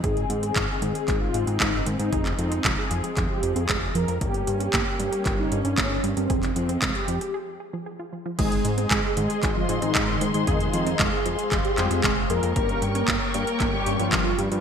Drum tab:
CC |----------------|----------------|----------------|----------------|
HH |xxxxx-xxx-xxx-xx|xxxxx-xxx-xxx-xx|xxxxx-xxx-xxx-xx|xxxxxxxx--------|
CP |----x---x---x---|-x--x---x---x---|----x---x---x---|-x--x-----------|
BD |o---o---o---o---|o---o---o---o---|o---o---o---o---|o---o-----------|

CC |x---------------|----------------|----------------|
HH |xxxxx-xxx-xxx-xx|xxxxx-xxxxxxx-xx|xxxxx-xxx-xxx-xx|
CP |----x---x---x---|----x---x-x-x---|----x---x---x---|
BD |o---o---o---o---|o---o---o---o---|o---o---o---o---|